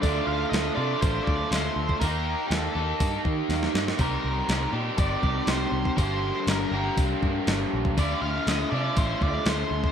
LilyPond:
<<
  \new Staff \with { instrumentName = "Lead electric guitar" } { \time 4/4 \key d \phrygian \tempo 4 = 121 d''8 f''8 ees''8 d''8 c''8 d''8 c''4 | bes'4 a'4. r4. | bes'4. r8 d''4 c''4 | c''4 bes'4 r2 |
d''8 f''8 ees''8 d''8 c''8 d''8 c''4 | }
  \new Staff \with { instrumentName = "Overdriven electric guitar" } { \time 4/4 \key d \phrygian <d a d' f'>4. <d a d' f'>2~ <d a d' f'>8 | <ees bes ees' g'>4. <ees bes ees' g'>2~ <ees bes ees' g'>8 | <c ees g ees' g'>4. <c ees g ees' g'>2~ <c ees g ees' g'>8 | <g, d g bes d' g'>4. <g, d g bes d' g'>2~ <g, d g bes d' g'>8 |
<d a d' f'>4. <d a d' f'>2~ <d a d' f'>8 | }
  \new Staff \with { instrumentName = "Picked electric bass" } { \clef bass \time 4/4 \key d \phrygian d,8 d,8 d,8 c8 a,,8 d,8 d,8 d,8 | ees,4 ees,8 ees,8 g,8 ees8 ees,8 g,8 | c,8 c,8 c,8 bes,8 g,,8 c,8 c,8 c,8 | g,,4 g,,8 g,,8 c,8 g,8 g,,8 bes,,8 |
d,8 d,8 d,8 c8 a,,8 d,8 d,8 d,8 | }
  \new DrumStaff \with { instrumentName = "Drums" } \drummode { \time 4/4 <hho bd>4 <hho sn>4 <hho bd>8 bd8 <hho sn>8. bd16 | <hho bd>4 <hho sn>4 <hho bd>8 bd8 <hho sn>16 sn16 sn16 sn16 | <hho bd>4 <hho sn>4 <hho bd>8 bd8 <hho sn>8. bd16 | <hho bd>4 <hho sn>4 <hho bd>8 bd8 <hho sn>8. bd16 |
<hho bd>4 <hho sn>4 <hho bd>8 bd8 <hho sn>8. bd16 | }
>>